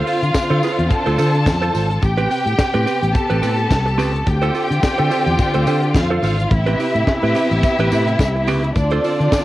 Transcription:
Already playing: D3 C4 F4 F5
0.07 F4 A4 C5, open hi-hat
0.23 D3, muted clean electric guitar stroke, closed hi-hat
0.35 muted clean electric guitar stroke, kick, snare, closed hi-hat, tambourine
0.50 D3 F4 A4 C5, closed hi-hat
0.63 F4 A4 C5, open hi-hat, tambourine
0.79 E2, muted clean electric guitar stroke, closed hi-hat
0.90 A4 A5, muted clean electric guitar stroke, kick, closed hi-hat, tambourine
1.06 D2 F4 A4 C5, closed hi-hat
1.18 D3 F4 A4 C5, open hi-hat, tambourine
1.34 muted clean electric guitar stroke, closed hi-hat
1.46 F2, muted clean electric guitar stroke, kick, snare, closed hi-hat, tambourine
1.61 F4 A4 C5, closed hi-hat
1.74 G#1 F4 A4 C5, open hi-hat, tambourine
1.90 muted clean electric guitar stroke, closed hi-hat
2.02 A1 C3 B3 G4 G5, muted clean electric guitar stroke, kick, closed hi-hat, tambourine
2.17 C4 G4 B4, closed hi-hat
2.30 C4 G4 B4, open hi-hat, tambourine
2.46 A2, muted clean electric guitar stroke, closed hi-hat
2.58 muted clean electric guitar stroke, kick, snare, closed hi-hat, tambourine
2.73 A2 C4 G4 B4, closed hi-hat
2.86 C4 G4 B4, open hi-hat, tambourine
3.02 A1, muted clean electric guitar stroke, closed hi-hat
3.14 A4 A5, muted clean electric guitar stroke, kick, closed hi-hat, tambourine
3.30 A1 C4 G4 B4, closed hi-hat
3.42 A2 C4 G4 B4, open hi-hat, tambourine
3.58 muted clean electric guitar stroke, closed hi-hat
3.70 C2, muted clean electric guitar stroke, kick, snare, closed hi-hat, tambourine
3.86 muted clean electric guitar stroke, closed hi-hat
3.98 C#2 C4 G4 B4, open hi-hat, tambourine
4.14 muted clean electric guitar stroke, closed hi-hat
4.26 D2 D3 C4 F4 G4 G5, muted clean electric guitar stroke, kick, closed hi-hat, tambourine
4.42 F4 A4 C5, closed hi-hat
4.54 F4 A4 C5, open hi-hat, tambourine
4.71 D3, closed hi-hat
4.83 muted clean electric guitar stroke, kick, snare, closed hi-hat, tambourine
4.98 D3 F4 A4 C5, closed hi-hat
5.10 F4 A4 C5, open hi-hat, tambourine
5.26 E2, muted clean electric guitar stroke, closed hi-hat
5.39 muted clean electric guitar stroke, kick, closed hi-hat, tambourine
5.54 D2 F4 A4 C5, closed hi-hat
5.67 D3 F4 A4 C5, open hi-hat, tambourine
5.83 muted clean electric guitar stroke, closed hi-hat
5.95 F2 F4 F5, muted clean electric guitar stroke, kick, snare, closed hi-hat, tambourine
6.10 F4 A4 C5, closed hi-hat
6.23 G#1 F4 A4 C5, open hi-hat, tambourine
6.39 muted clean electric guitar stroke, closed hi-hat
6.51 A1 C3 B3 E4 G4 E5, muted clean electric guitar stroke, kick, closed hi-hat
6.66 C4 G4 B4, closed hi-hat
6.79 C4 G4 B4, open hi-hat, tambourine
6.95 A2, closed hi-hat
7.07 muted clean electric guitar stroke, kick, snare, closed hi-hat, tambourine
7.22 A2 C4 G4 B4, closed hi-hat
7.35 C4 G4 B4, open hi-hat, tambourine
7.51 A1, muted clean electric guitar stroke, closed hi-hat
7.63 muted clean electric guitar stroke, kick, closed hi-hat, tambourine
7.79 A1 C4 G4 B4, closed hi-hat
7.91 A2 C4 G4 B4, open hi-hat, tambourine
8.07 muted clean electric guitar stroke, closed hi-hat
8.19 C2, muted clean electric guitar stroke, kick, snare, closed hi-hat, tambourine
8.35 muted clean electric guitar stroke, closed hi-hat
8.47 C#2 C4 G4 B4, open hi-hat, tambourine
8.64 muted clean electric guitar stroke, closed hi-hat
8.75 D2 D3 C4 D4 F4 D5, muted clean electric guitar stroke, kick, closed hi-hat, tambourine
8.90 F4 A4 C5, closed hi-hat
9.04 F4 A4 C5, open hi-hat, tambourine
9.20 D3, closed hi-hat
9.31 muted clean electric guitar stroke, kick, snare, closed hi-hat, tambourine

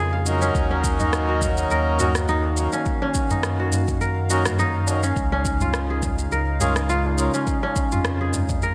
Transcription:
Already playing: F2 C#3 G#3 C#4 D#4 F4 G#4 A#4 C#5
0.13 F5
0.24 F#3 C#4 D#4 A#4, shaker
0.42 C#4, shaker
0.54 D#2 D#3 A#3 F#4 F5, kick, shaker
0.71 C#4, tabla na
0.84 kick, shaker
1.00 D#4, tabla ge, shaker
1.13 cross-stick, shaker
1.29 F#4
1.42 kick, tabla tin, tabla ge, shaker
1.57 shaker
1.71 D#2 A#4, shaker
1.98 F#3 C#4 D#4 F#4 A#4, tabla na, tabla tin, tabla ge, shaker
2.15 cross-stick, shaker
2.28 D#4, shaker
2.44 tabla na, tabla tin
2.57 F#3 C#4 D#4 A#4, tabla tin, shaker
2.73 C#4, tabla na, shaker
2.86 kick, shaker
3.02 C#4, tabla na
3.14 kick, shaker
3.30 F#2 D#4, tabla ge, shaker
3.43 cross-stick, shaker
3.60 F#4
3.72 tabla tin, tabla ge, shaker
3.88 kick, tabla tin, shaker
4.01 A#4, shaker
4.29 F#3 C#4 D#4 F#4 A#4, tabla na, shaker
4.45 cross-stick, tabla ge, shaker
4.59 D#4, shaker
4.87 F#3 C#4 D#4 A#4, tabla na, shaker
5.03 C#4, shaker
5.16 C#2 C#3 G#3 D#4, kick, shaker
5.32 C#4, tabla na
5.45 kick, shaker
5.60 F4, tabla ge, shaker
5.74 cross-stick, shaker
5.90 G#4
6.03 kick, tabla tin, tabla ge, shaker
6.19 tabla tin, shaker
6.32 C#2 A#4, shaker
6.60 G#3 C#4 F4 G#4 A#4, tabla na, tabla tin, tabla ge, shaker
6.76 cross-stick, shaker
6.89 F4, shaker
7.05 tabla na, tabla tin
7.18 G#3 C#4 F4 A#4, shaker
7.34 C#4, tabla na, shaker
7.47 kick, shaker
7.63 C#4, tabla na
7.76 kick, shaker
7.92 F2 F4, tabla ge, shaker
8.05 cross-stick, shaker
8.21 G#4
8.33 tabla tin, tabla ge, shaker
8.49 kick, tabla tin, shaker
8.62 A#4, shaker

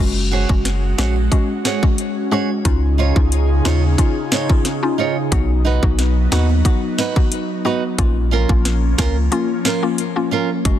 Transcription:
0.00 F#1 G#3 C#4 F#4
0.31 F#4 G#4 C#5
0.49 F#1 G#3 C#4 F#4, kick
0.65 snare, closed hi-hat
0.98 A#1 G#3 C#4 F#4 G#4 C#5, snare
1.16 muted nylon-string guitar stroke
1.32 G#3 C#4 F#4, kick, closed hi-hat
1.65 F#4 G#4 C#5, snare
1.83 G#3 C#4 F#4, kick
1.98 closed hi-hat
2.31 G#3 C#4 F#4 G#4 C#5
2.65 C#2 C#3 C#4 D#4 F4 G#4, kick, closed hi-hat
2.98 D#4 F4 C#5
3.16 C#2 C#4 D#4 F4, kick
3.32 closed hi-hat
3.65 D#2 C#4 D#4 F4 C#5, snare
3.98 C#4 D#4 F4, kick, closed hi-hat
4.31 D#4 F4 C#5, snare
4.49 C#4 D#4 F4, kick
4.65 snare, closed hi-hat
4.83 C#4 D#4 F4
4.98 D#4 F4 C#5
5.32 B1 F#3 B3 D#4 F#4, kick, closed hi-hat
5.65 D#4 F#4 B4
5.83 B1 B3 D#4 F#4, kick
5.99 snare, closed hi-hat
6.31 D#2 B3 D#4 F#4 B4, snare
6.49 muted nylon-string guitar stroke
6.65 B3 D#4 F#4, kick, closed hi-hat
6.98 D#4 F#4 B4, snare
7.16 B3 D#4 F#4, kick
7.32 closed hi-hat
7.65 B3 D#4 F#4 B4
7.98 A#1 F3 A#3 C#4 F4, kick, closed hi-hat
8.31 C#4 F4 A#4
8.49 A#1 A#3 C#4 F4, kick
8.65 snare, closed hi-hat
8.98 C#2 A#3 C#4 F4 A#4, kick, snare
9.32 A#3 C#4 F4, closed hi-hat
9.65 C#4 F4 A#4, snare
9.83 A#3 C#4 F4
9.98 closed hi-hat
10.16 A#3 C#4 F4
10.31 C#4 F4 A#4
10.65 F#1 F#3 G#3 C#4 F#4, kick, closed hi-hat

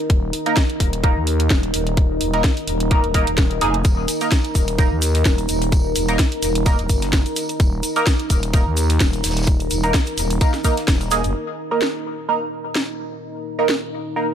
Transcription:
Already playing: D#4 A#4 A#5
0.10 D#1, kick, closed hi-hat
0.33 open hi-hat
0.46 A#3 D#4 A#4, closed hi-hat
0.57 kick, snare, closed hi-hat
0.70 closed hi-hat
0.80 D#1, kick, open hi-hat
0.93 closed hi-hat
1.04 A#3 D#4 A#4, kick, closed hi-hat
1.16 D#2
1.27 open hi-hat
1.40 closed hi-hat
1.50 D#1, kick, snare, closed hi-hat
1.63 closed hi-hat
1.74 D#1, open hi-hat
1.87 closed hi-hat
1.97 kick, closed hi-hat
2.21 D#1, open hi-hat
2.34 A#3 D#4 A#4, closed hi-hat
2.44 kick, snare, closed hi-hat
2.57 open hi-hat
2.68 D#1, open hi-hat
2.80 closed hi-hat
2.91 A#3 D#4 A#4, kick, closed hi-hat
3.04 D#1, closed hi-hat
3.14 A#3 D#4 A#4, kick, open hi-hat
3.27 D#1, closed hi-hat
3.38 kick, snare, closed hi-hat
3.51 closed hi-hat
3.61 F1 A#3 D#4 G#4, open hi-hat
3.74 closed hi-hat
3.85 D#1, kick, closed hi-hat, tambourine, shaker
4.08 open hi-hat, tambourine, shaker
4.21 A#3 D#4 A#4, closed hi-hat, shaker
4.32 kick, snare, closed hi-hat, tambourine, shaker
4.44 closed hi-hat
4.55 D#1, kick, open hi-hat, tambourine, shaker
4.68 closed hi-hat, shaker
4.78 A#3 D#4 A#4, kick, closed hi-hat, tambourine, shaker
4.91 D#2
5.02 open hi-hat, tambourine, shaker
5.15 snare, closed hi-hat, shaker
5.25 D#1, kick, snare, closed hi-hat, tambourine, shaker
5.38 closed hi-hat, shaker
5.49 D#1, open hi-hat, tambourine, shaker
5.62 closed hi-hat, shaker
5.72 kick, closed hi-hat, tambourine, shaker
5.95 D#1, open hi-hat, tambourine, shaker
6.08 A#3 D#4 A#4, closed hi-hat, shaker
6.19 kick, snare, closed hi-hat, tambourine, shaker
6.32 open hi-hat
6.42 D#1, open hi-hat, tambourine, shaker
6.55 closed hi-hat, shaker
6.66 A#3 D#4 A#4, kick, closed hi-hat, tambourine, shaker
6.79 D#1, closed hi-hat
6.89 F#1, kick, open hi-hat, tambourine, shaker
7.02 snare, closed hi-hat, shaker
7.13 kick, snare, closed hi-hat, tambourine, shaker
7.26 closed hi-hat, shaker
7.36 open hi-hat, tambourine, shaker
7.49 closed hi-hat, shaker
7.60 D#1, kick, closed hi-hat, tambourine, shaker
7.83 open hi-hat, tambourine, shaker
7.96 A#3 D#4 A#4, closed hi-hat, shaker
8.06 kick, snare, closed hi-hat, tambourine, shaker
8.19 closed hi-hat
8.30 D#1, kick, open hi-hat, tambourine, shaker
8.43 closed hi-hat, shaker
8.54 A#3 D#4 A#4, kick, closed hi-hat, tambourine, shaker
8.66 D#2
8.76 open hi-hat, tambourine, shaker
8.90 snare, closed hi-hat, shaker
9.00 D#1, kick, snare, closed hi-hat, tambourine, shaker
9.13 closed hi-hat, shaker
9.24 D#1, snare, open hi-hat, tambourine, shaker
9.30 snare, tambourine
9.37 snare, closed hi-hat, tambourine, shaker
9.42 snare, tambourine
9.47 kick, closed hi-hat, shaker
9.60 closed hi-hat, shaker
9.70 D#1, open hi-hat, tambourine, shaker
9.84 A#3 D#4 A#4, closed hi-hat, shaker
9.94 kick, snare, closed hi-hat, tambourine, shaker
10.06 closed hi-hat, shaker
10.18 D#1, open hi-hat, tambourine, shaker
10.30 closed hi-hat, shaker
10.41 A#3 D#4 A#4, kick, closed hi-hat, tambourine, shaker
10.54 snare, closed hi-hat, shaker
10.64 A#3 D#4 A#4, kick, open hi-hat, tambourine, shaker
10.77 snare, closed hi-hat, shaker
10.88 D#1, kick, snare, closed hi-hat, tambourine, shaker
11.01 closed hi-hat, shaker
11.11 A#3 D#4 G#4, open hi-hat, tambourine, shaker
11.24 F#1, closed hi-hat, shaker
11.35 A#3 D#4 D#5
11.71 A#3 D#4 A#4
11.82 snare
12.29 A#3 D#4 A#4
12.53 tambourine
12.65 snare
12.75 snare
13.12 closed hi-hat
13.23 tambourine
13.46 tambourine
13.59 A#3 D#4 A#4
13.69 snare
14.16 A#3 D#4 A#4

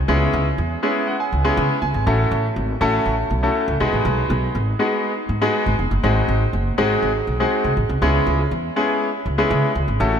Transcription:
0.08 C#2 G#3 B3 C#4 E4 G#4
0.33 C#2
0.58 E2
0.83 G#3 B3 C#4 E4 G#4 E5
1.07 F#5
1.20 G#5
1.33 C#2
1.44 G#3 B3 C#4 E4 G#4
1.57 C#3 E5
1.82 C#2 G#5
1.94 G#1
2.07 A1 A3 C#4 E4 F#4 A4
2.31 A1
2.56 G#1
2.81 A1 A3 C#4 E4 F#4 A4
3.06 A1
3.30 B1
3.43 A3 C#4 E4 F#4 A4
3.68 C#2
3.80 B1 G#3 B3 D#4 F#4 G#4
3.93 A1
4.05 B1
4.30 B1
4.55 G#1
4.79 G#3 B3 D#4 F#4 G#4
5.29 G#2
5.41 G#3 B3 D#4 F#4 G#4
5.66 G#1
5.79 E1
5.91 F#1
6.03 G#1 G#3 C4 D#4 F#4 G#4
6.28 G#1
6.53 F#1
6.78 G#1 G#3 C4 D#4 F#4 G#4
7.02 G#1
7.27 B1
7.40 G#3 C4 D#4 F#4 G#4
7.64 C2
7.77 A1
7.89 C2
8.02 C#2 G#3 B3 C#4 E4 G#4
8.27 C#2
8.51 E2
8.76 G#3 B3 C#4 E4 G#4
9.26 C#2
9.38 G#3 B3 C#4 E4 G#4
9.51 C#3
9.75 C#2
9.88 G#1
10.00 A1 A3 C#4 E4 F#4 A4

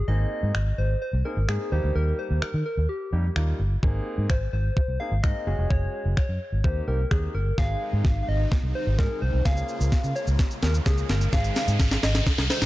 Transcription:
0.08 G#1 A#3 C4 D#4 G#4 D#5
0.43 G#2
0.55 G#1, finger snap
0.78 G#1 C5
1.02 C5
1.13 C2
1.25 A#3 C4 D#4 G#4 A#4
1.37 G#1
1.48 G#2 A#3 C4 D#4 G#4, finger snap
1.72 D#2 G3 A#3 D#4 G4 C5
1.84 D2
1.95 D#2 A#4
2.19 C5
2.31 D#2
2.42 A#4, finger snap, muted fingered electric bass stroke
2.54 D#3
2.66 A#4
2.77 D#2
2.89 G4
3.12 F2 G3 A#3 D#4 G4
3.36 D#2 G3 A#3 D#4 F4, finger snap
3.59 G1
3.83 G#1 A#3 C4 D#4 G#4, kick
4.18 G#2
4.30 G#1 C5, finger snap, kick
4.53 G#1 C5
4.77 kick
4.88 C2
5.00 A#3 C4 D#4 G#4 F5
5.12 G#1
5.23 G#2 A#3 C4 D#4 G#4 D#5, finger snap, kick
5.47 F#1 G#3 C#4 F#4 G#4
5.59 F1
5.70 F#1 C#5, kick
6.06 F#1
6.17 C#5, finger snap, muted fingered electric bass stroke, kick
6.29 F#2
6.52 G#1
6.64 D#2 A#3 C4 D#4 G4 C5, kick
6.87 C2 A#3 C4 D#4 G4 A#4
7.11 D#2 A#3 C4 D#4 G4 G#4, finger snap, kick
7.35 G1 A#4
7.58 G#1 C3 D#3 G#3 C4 D#4 G#4 F5, kick, snare, riser
7.93 G#2
8.05 G#1, kick, snare
8.23 F5
8.28 G#1 D#5
8.52 kick, snare
8.63 C2
8.75 C5
8.87 G#1
8.98 G#2 G#3 C4 D#4 G#4 A#4, kick, snare
9.22 C2 C5
9.34 C2
9.45 C#2 A#3 C#4 F4 G#4 F5, kick, snare, shaker
9.57 shaker
9.69 shaker
9.81 C#2, shaker
9.92 kick, snare, shaker
10.04 C#3, shaker
10.16 C#5, shaker
10.27 C#2, shaker
10.39 kick, snare, shaker
10.51 shaker
10.63 D#2 A#4, snare, shaker
10.74 shaker
10.86 C#2 A#3 C#4 F4 G#4, kick, snare, shaker
10.98 shaker
11.09 G1 A#4, snare, shaker
11.21 shaker
11.33 G#1 C3 D#3 G#3 C4 D#4 G#4 F5, kick, snare, shaker
11.44 closed hi-hat, shaker
11.56 snare, open hi-hat, shaker
11.68 G#2, closed hi-hat, shaker
11.79 G#1, kick, snare, tambourine, shaker
11.91 snare, closed hi-hat, shaker
12.03 G#1 D#5, snare, open hi-hat, shaker
12.15 snare, closed hi-hat, shaker
12.27 kick, snare, shaker
12.38 C2, snare, closed hi-hat, shaker
12.50 C5, snare, open hi-hat, shaker
12.62 G#1, snare, closed hi-hat, shaker

